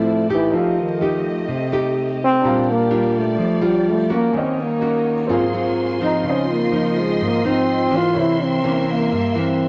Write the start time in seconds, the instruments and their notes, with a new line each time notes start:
Already playing: nylon-string guitar A2 F3 C4 E4, trombone A3, string section C4 E4 D5, grand piano D4 C5 E5
0.30 trombone E3, nylon-string guitar A3 D#4 G4
0.51 nylon-string guitar F3, trombone F3, string section A3 G4 D#5, grand piano D#4 G4 A4
0.57 grand piano F5
0.79 trombone D#3
1.01 nylon-string guitar A3 D#4 G4
1.48 nylon-string guitar C3
1.72 nylon-string guitar A3 D#4 G4
2.24 trombone C4
2.41 nylon-string guitar A#2 G3 D4, string section G3 D5, grand piano D4 G4
2.45 nylon-string guitar F4, grand piano F5 A#5
2.71 trombone A#3
2.91 nylon-string guitar G3 D4 F4
3.18 trombone A3
3.38 nylon-string guitar F3
3.61 nylon-string guitar G3 D4 F4, trombone G3
3.89 trombone A3
4.09 nylon-string guitar A#3 C#4 F#4, trombone A#3
4.32 nylon-string guitar D#3, string section F#3 D#4 C#5, grand piano C#4 F#4 A#4
4.37 trombone C4, grand piano D#5
4.61 trombone A#3
4.81 nylon-string guitar A#3 C#4 F#4
5.27 nylon-string guitar G#2 F#3 C4 F4, string section A#3 F4 G#4 C6, grand piano C4 G#4
5.32 grand piano A#4 F5
5.53 nylon-string guitar F#3 C4 F4
6.01 nylon-string guitar F3 C4 D#4, trombone D#4
6.24 nylon-string guitar C#3, string section C4 D#5, grand piano F4
6.28 trombone C#4, grand piano C5 D#5
6.52 trombone A#3
6.72 nylon-string guitar F3 C4 D#4
7.00 trombone G#3
7.21 nylon-string guitar G#2, trombone A#3
7.44 nylon-string guitar F3 C4 D#4, trombone C4
7.91 nylon-string guitar E3 A#3
7.96 trombone F4
8.13 nylon-string guitar C3, string section A#3 A#4 E5, grand piano A#4 C5 C#5
8.19 trombone E4, grand piano E5
8.43 trombone C4
8.64 nylon-string guitar E3 A#3 C#4
8.90 trombone A#3
9.12 nylon-string guitar G2
9.35 nylon-string guitar E3 A#3, trombone C4